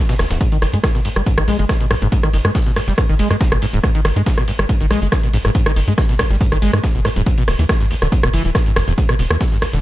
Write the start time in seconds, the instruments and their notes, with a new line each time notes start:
0.09 acid bass B2, snare, closed hi-hat, ride
0.19 analog synth bass G1, acid bass D2, cross-stick, snare, open hi-hat, ride
0.31 analog synth bass D1, acid bass E2, snare, closed hi-hat, ride
0.41 acid bass G#2, kick, closed hi-hat, ride
0.52 acid bass D#3, closed hi-hat, ride
0.62 analog synth bass G#1, acid bass D#3, cross-stick, open hi-hat, ride
0.73 analog synth bass G#2, acid bass G#3, closed hi-hat, ride
0.84 acid bass D#3, kick, cross-stick, snare, closed hi-hat, ride
0.95 acid bass B2, snare, closed hi-hat
1.05 acid bass G2, open hi-hat, ride
1.16 analog synth bass G#1, acid bass G3, cross-stick, closed hi-hat
1.26 acid bass G#2, kick, closed hi-hat, ride
1.38 analog synth bass G#1, acid bass D#3, cross-stick, closed hi-hat
1.48 analog synth bass B1, acid bass G#3, open hi-hat, ride
1.59 analog synth bass G#1, acid bass G#3, closed hi-hat
1.69 acid bass D#3, kick, cross-stick, snare, closed hi-hat, ride
1.81 acid bass B2, closed hi-hat
1.91 analog synth bass B1, acid bass G#2, cross-stick, open hi-hat, ride
2.02 analog synth bass G#1, acid bass G#2, closed hi-hat
2.12 acid bass G#2, kick, closed hi-hat, ride
2.23 acid bass D#3, cross-stick, closed hi-hat
2.34 analog synth bass G#1, acid bass D#3, open hi-hat, ride
2.45 analog synth bass G#2, acid bass G#3, cross-stick, closed hi-hat
2.55 acid bass D#3, kick, snare, closed hi-hat, open hi-hat
2.66 acid bass B2, snare, closed hi-hat
2.76 acid bass G2, cross-stick, open hi-hat, ride
2.88 analog synth bass G#1, acid bass G3, snare, closed hi-hat
2.98 acid bass G#2, kick, cross-stick, closed hi-hat, ride
3.09 analog synth bass G#1, acid bass D#3, closed hi-hat
3.19 analog synth bass G#1, acid bass G#3, open hi-hat, ride
3.31 analog synth bass G#2, acid bass G#3, cross-stick, closed hi-hat, ride
3.41 acid bass D#3, kick, snare, closed hi-hat, ride
3.52 analog synth bass G#1, acid bass B2, cross-stick, closed hi-hat
3.62 acid bass G#2, open hi-hat, ride
3.73 analog synth bass D#1, acid bass G#2, closed hi-hat
3.84 acid bass G#2, kick, cross-stick, closed hi-hat, ride
3.95 acid bass D#3, closed hi-hat, ride
4.05 analog synth bass G#1, acid bass D#3, cross-stick, open hi-hat, ride
4.16 analog synth bass G#2, acid bass G#3, closed hi-hat, ride
4.26 acid bass D#3, kick, snare, closed hi-hat, ride
4.38 acid bass B2, cross-stick, snare, closed hi-hat
4.48 acid bass G2, open hi-hat, ride
4.59 analog synth bass G#1, acid bass G3, cross-stick, closed hi-hat
4.69 acid bass G#2, kick, closed hi-hat, ride
4.81 analog synth bass G#1, acid bass D#3, closed hi-hat
4.91 analog synth bass B1, acid bass G#3, cross-stick, open hi-hat, ride
5.02 analog synth bass G#1, acid bass G#3, closed hi-hat
5.12 acid bass D#3, kick, cross-stick, snare, closed hi-hat, ride
5.23 acid bass B2, closed hi-hat
5.34 analog synth bass B1, acid bass G#2, open hi-hat, ride
5.45 analog synth bass G#1, acid bass G#2, cross-stick, closed hi-hat
5.55 acid bass G#2, kick, closed hi-hat, ride
5.66 acid bass D#3, cross-stick, closed hi-hat
5.76 analog synth bass G#1, acid bass D#3, open hi-hat, ride
5.88 analog synth bass G#2, acid bass G#3, closed hi-hat
5.98 acid bass D#3, kick, cross-stick, snare, closed hi-hat, open hi-hat
6.09 acid bass B2, snare, closed hi-hat
6.19 acid bass G2, kick, cross-stick, open hi-hat, ride
6.31 analog synth bass G#1, acid bass G3, snare, closed hi-hat
6.41 acid bass G#2, kick, closed hi-hat, ride
6.52 analog synth bass G#1, acid bass D#3, cross-stick, closed hi-hat
6.62 analog synth bass G#1, acid bass G#3, open hi-hat, ride
6.73 analog synth bass G#2, cross-stick, closed hi-hat, ride
6.84 acid bass D#3, kick, snare, closed hi-hat, ride
6.95 analog synth bass G#1, acid bass B2, closed hi-hat
7.05 acid bass G#2, cross-stick, open hi-hat, ride
7.16 analog synth bass D#1, acid bass G#2, closed hi-hat
7.26 acid bass E2, kick, closed hi-hat, ride
7.38 acid bass B2, closed hi-hat, ride
7.48 analog synth bass E1, acid bass B2, cross-stick, open hi-hat, ride
7.59 analog synth bass E2, acid bass E3, closed hi-hat, ride
7.69 acid bass B2, kick, cross-stick, snare, closed hi-hat, ride
7.81 acid bass G2, snare, closed hi-hat
7.91 acid bass D2, open hi-hat, ride
8.02 analog synth bass E1, acid bass D3, cross-stick, closed hi-hat
8.12 acid bass E2, kick, closed hi-hat, ride
8.23 analog synth bass E1, acid bass B2, cross-stick, closed hi-hat
8.34 analog synth bass G1, acid bass E3, open hi-hat, ride
8.45 analog synth bass E1, acid bass E3, closed hi-hat
8.55 acid bass B2, kick, cross-stick, snare, closed hi-hat, ride
8.66 acid bass G2, closed hi-hat
8.76 analog synth bass G1, acid bass E2, cross-stick, open hi-hat, ride
8.88 analog synth bass E1, acid bass E2, closed hi-hat
8.98 acid bass E2, kick, closed hi-hat, ride
9.09 acid bass B2, cross-stick, closed hi-hat
9.19 analog synth bass E1, acid bass B2, open hi-hat, ride
9.31 analog synth bass E2, acid bass E3, cross-stick, closed hi-hat
9.41 acid bass B2, kick, snare, closed hi-hat, open hi-hat
9.52 acid bass G2, snare, closed hi-hat
9.62 acid bass D2, cross-stick, open hi-hat, ride
9.73 analog synth bass E1, acid bass D3, snare, closed hi-hat